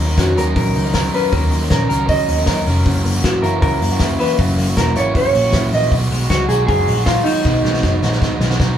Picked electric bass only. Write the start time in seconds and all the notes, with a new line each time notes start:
0.00 D#2
0.18 F2
0.38 D#2
0.56 A#1
0.75 C#2
1.32 D#2
1.52 D#2
1.71 A#1
1.90 C#2
2.28 D#2
2.47 D#2
2.65 F1
2.86 F#1
3.04 F#1
3.24 G#1
3.42 F#1
3.62 C#2
3.81 F#2
4.39 F#1
4.56 F#1
4.77 E1
4.95 G#1
5.34 A#1
5.53 A#1
5.72 A#1
5.92 B1
6.11 B1
6.30 C#2
6.49 B1
6.68 F#1
6.87 A#1
7.45 B1
7.64 B1
7.83 F#1
8.02 A#1
8.40 B1
8.60 B1